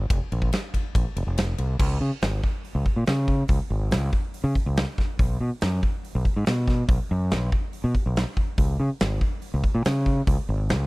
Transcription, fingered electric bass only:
0.10 0.19 F1 medium
0.32 0.49 A#1 loud
0.95 1.04 A#1 medium
1.16 1.25 F1 medium
1.27 1.53 F1 medium
1.59 1.76 C2 medium
1.80 1.97 C#2 medium
2.01 2.10 C#3 medium
2.22 2.40 G#1 medium
2.75 2.84 C#2 medium
2.96 3.05 A#2 medium
3.08 3.42 C#3 medium
3.49 3.58 C#2 medium
3.70 3.93 G#1 medium
3.91 4.09 C#2 medium
4.44 4.53 C#3 medium
4.66 4.84 C#2 loud
5.19 5.37 B1 loud
5.40 5.49 B2 medium
5.63 5.80 F#2 medium
6.15 6.24 B1 medium
6.36 6.45 G#2 medium
6.48 6.82 B2 medium
6.88 6.97 B1 medium
7.11 7.33 F#2 loud
7.32 7.49 B1 medium
7.84 7.93 B2 medium
8.06 8.23 B1 medium
8.58 8.76 C#2 medium
8.80 8.88 C#3 medium
9.01 9.18 G#1 medium
9.54 9.63 C#2 medium
9.75 9.83 A#2 medium
9.86 10.20 C#3 medium
10.27 10.36 C#2 medium
10.49 10.71 G#1 medium
10.70 10.87 C#2 medium

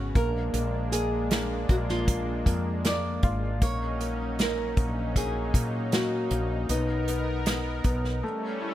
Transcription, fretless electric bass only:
0.00 0.12 G#1 medium
0.15 0.51 A#1 medium
0.54 1.65 A#1 loud
1.69 2.42 A#1 medium
2.46 3.19 F2 medium
3.23 3.62 G#1 medium
3.62 4.73 A#1 loud
4.77 5.50 A#1 medium
5.54 6.27 A#2 medium
6.31 6.67 A#1 medium
6.69 7.81 B1 medium
7.85 8.21 B1 medium

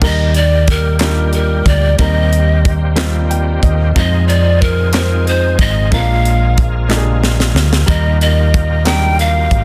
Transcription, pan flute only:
0.04 0.38 D#5 loud
0.36 0.71 D5 loud
0.70 1.00 A#4 medium
1.01 1.31 A#4 medium
1.34 1.69 A#4 medium
1.67 2.00 D5 medium
1.98 2.72 D#5 loud
3.97 4.29 D#5 loud
4.28 4.63 D5 medium
4.62 4.94 A#4 medium
4.95 5.30 A#4 medium
5.28 5.62 C5 medium
5.60 5.94 D#5 loud
5.93 6.66 F5 loud
7.88 8.18 D#5 loud
8.22 8.88 D#5 loud
8.86 9.21 G5 loud
9.20 9.64 F5 loud

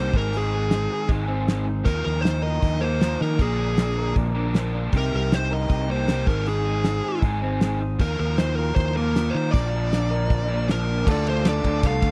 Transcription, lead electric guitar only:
0.00 0.17 C5 medium
0.17 0.35 A#4 medium
0.37 1.08 G#4 medium
1.85 2.03 A#4 medium
2.05 2.21 A#4 medium
2.21 2.43 C5 medium
2.43 2.83 D#5 medium
2.81 3.21 C5 medium
3.22 3.39 A#4 medium
3.42 4.13 G#4 medium
4.97 5.15 A#4 loud
5.16 5.34 A#4 medium
5.34 5.53 C5 medium
5.53 5.91 D#5 loud
5.91 6.30 C5 medium
6.27 6.45 A#4 medium
6.49 7.20 G#4 medium
8.01 8.19 A#4 medium
8.20 8.38 A#4 medium
8.38 8.55 C5 medium
8.55 8.75 A#4 medium
8.75 8.96 C5 medium
8.97 9.36 A#4 medium
9.30 9.51 C5 medium
9.51 10.67 D5 loud
10.71 11.06 A#4 medium
11.11 11.29 D5 loud
11.29 11.45 C5 medium
11.49 11.83 D5 medium
11.87 12.11 F5 loud

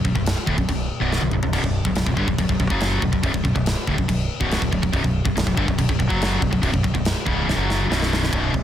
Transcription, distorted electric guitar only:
0.04 0.14 B1 medium
0.04 0.14 F#2 medium
0.15 0.32 B1 medium
0.15 0.33 F#2 medium
0.46 0.57 D2 medium
0.46 0.57 A2 medium
0.58 0.68 B1 medium
0.58 0.68 F#2 medium
0.69 0.86 B1 medium
0.69 0.86 F#2 medium
1.00 1.21 B1 medium
1.00 1.21 F#2 medium
1.00 1.22 B2 loud
1.23 1.32 B1 medium
1.23 1.32 F#2 medium
1.33 1.42 B1 medium
1.33 1.42 F#2 medium
1.43 1.52 B1 medium
1.43 1.52 F#2 medium
1.53 1.63 B1 medium
1.53 1.63 F#2 loud
1.64 1.81 B1 medium
1.64 1.81 F#2 medium
1.86 1.95 B1 medium
1.86 1.95 F#2 medium
1.96 2.06 B1 medium
1.96 2.06 F#2 medium
2.07 2.16 B1 medium
2.07 2.17 F#2 medium
2.17 2.27 G2 loud
2.17 2.27 D3 loud
2.29 2.38 B1 medium
2.29 2.38 F#2 medium
2.39 2.48 B1 medium
2.39 2.48 F#2 medium
2.49 2.59 B1 medium
2.49 2.59 F#2 medium
2.60 2.70 B1 medium
2.60 2.69 F#2 medium
2.70 3.01 F#2 medium
2.70 3.02 C#3 medium
2.70 3.02 F#3 medium
3.02 3.11 B1 medium
3.02 3.11 F#2 medium
3.12 3.22 B1 medium
3.12 3.23 F#2 medium
3.23 3.32 B1 medium
3.23 3.32 F#2 medium
3.33 3.42 B1 medium
3.33 3.43 F#2 medium
3.44 3.54 B1 medium
3.44 3.54 F#2 medium
3.55 3.72 B1 medium
3.55 3.72 F#2 medium
3.87 3.97 D2 medium
3.87 3.97 A2 loud
3.98 4.07 B1 medium
3.98 4.07 F#2 medium
4.08 4.25 B1 medium
4.08 4.25 F#2 medium
4.40 4.61 B1 medium
4.40 4.61 F#2 medium
4.40 4.61 B2 medium
4.62 4.71 B1 medium
4.62 4.71 F#2 medium
4.72 4.81 B1 medium
4.72 4.82 F#2 medium
4.83 4.92 B1 medium
4.83 4.92 F#2 medium
4.93 5.03 B1 medium
4.93 5.03 F#2 loud
5.04 5.21 B1 medium
5.04 5.21 F#2 medium
5.25 5.34 B1 medium
5.25 5.35 F#2 medium
5.36 5.46 B1 medium
5.36 5.46 F#2 medium
5.47 5.56 B1 medium
5.47 5.57 F#2 medium
5.57 5.67 G2 medium
5.57 5.67 D3 loud
5.68 5.77 B1 medium
5.68 5.78 F#2 medium
5.78 5.88 B1 medium
5.78 5.88 F#2 medium
5.89 5.98 B1 medium
5.89 5.98 F#2 medium
5.99 6.09 B1 medium
5.99 6.08 F#2 medium
6.09 6.40 F#2 medium
6.09 6.41 C#3 medium
6.09 6.41 F#3 medium
6.40 6.50 B1 medium
6.40 6.50 F#2 medium
6.51 6.61 B1 medium
6.51 6.61 F#2 medium
6.62 6.71 B1 medium
6.62 6.71 F#2 loud
6.72 6.82 B1 medium
6.72 6.82 F#2 medium
6.83 6.93 B1 medium
6.83 6.93 F#2 medium
6.94 7.11 B1 medium
6.94 7.11 F#2 medium
7.26 7.46 C#2 loud
7.26 7.47 G#2 medium
7.26 7.47 C#3 loud
7.46 7.55 B1 medium
7.46 7.55 F#2 loud
7.56 7.88 F#2 medium
7.56 7.88 C#3 medium
7.56 7.89 F#3 loud
7.89 8.31 B1 medium
7.89 8.32 F#2 loud
7.89 8.32 B2 loud
8.32 8.52 B1 medium
8.32 8.52 F#2 medium
8.32 8.53 B2 medium
8.53 8.63 B1 medium
8.53 8.63 F#2 medium

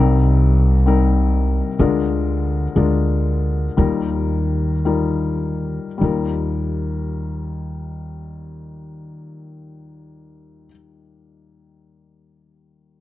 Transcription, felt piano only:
0.00 1.75 C2 medium
0.00 1.75 C3 medium
0.00 0.75 G3 medium
0.00 0.75 C4 medium
0.00 0.76 D#4 medium
0.00 0.76 A#4 medium
0.86 1.67 G3 medium
0.86 1.67 C4 medium
0.86 1.68 D#4 medium
0.86 1.68 A#4 medium
1.79 3.74 D2 medium
1.79 3.74 D3 medium
1.79 2.64 G#3 medium
1.79 2.64 D4 medium
1.79 2.64 F4 medium
1.79 2.64 A#4 medium
2.76 3.65 G#3 medium
2.76 3.65 D4 medium
2.76 3.65 F4 medium
2.76 3.65 A#4 medium
3.77 5.97 D#2 soft
3.77 5.97 D#3 medium
3.77 4.71 G3 medium
3.77 4.72 D#4 medium
3.77 4.72 F4 medium
3.77 4.72 A#4 medium
4.85 5.86 G3 medium
4.85 5.86 D#4 soft
4.85 5.87 F4 soft
4.85 5.87 A#4 medium
5.98 10.68 D#2 soft
5.98 10.64 G3 medium
5.98 10.67 D#4 soft
6.02 10.69 F4 soft
6.02 10.71 A#4 medium

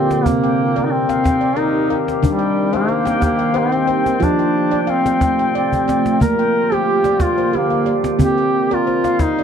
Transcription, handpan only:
0.00 0.21 A#2 medium
0.00 0.26 G4 medium
0.00 0.43 D5 medium
0.00 0.26 F5 medium
0.26 2.20 C3 medium
0.26 0.59 C4 medium
0.44 0.92 G5 medium
0.76 1.09 A#4 medium
0.76 1.24 D5 medium
1.09 1.42 F5 medium
1.24 1.75 G5 medium
1.41 1.90 D5 medium
1.56 1.89 A#4 medium
1.90 2.23 A#4 medium
1.90 2.41 F5 medium
2.23 4.17 D#3 medium
2.23 2.56 D4 medium
2.39 2.88 G5 medium
2.73 2.87 C5 medium
2.73 3.22 F5 medium
2.88 3.39 C5 medium
3.05 3.20 G5 medium
3.21 3.71 G5 medium
3.39 3.88 F5 medium
3.54 3.86 C5 medium
3.72 3.86 G5 medium
3.87 4.21 C5 medium
3.87 4.38 G5 medium
4.20 6.16 F3 medium
4.20 4.54 F4 medium
4.39 4.70 G5 medium
4.71 5.05 D5 medium
4.71 5.05 G5 medium
4.87 5.38 F5 medium
5.06 5.20 G5 medium
5.21 5.38 G5 medium
5.39 5.72 G5 medium
5.55 5.87 D5 medium
5.73 5.87 G5 medium
5.88 6.21 D5 medium
5.88 6.38 G5 medium
6.20 8.16 A#3 medium
6.39 6.88 G5 medium
6.72 7.05 G4 medium
6.72 7.21 C5 medium
7.05 7.38 D5 medium
7.19 7.71 G5 medium
7.38 7.87 C5 medium
7.53 7.85 G4 medium
7.70 8.20 F5 medium
7.86 8.20 G4 medium
7.86 8.38 D5 medium
8.19 8.53 C4 medium
8.38 8.87 G5 medium
8.71 9.05 A#4 medium
8.71 9.20 D5 medium
8.87 9.38 C5 medium
9.05 9.38 F5 medium
9.39 9.43 D5 medium

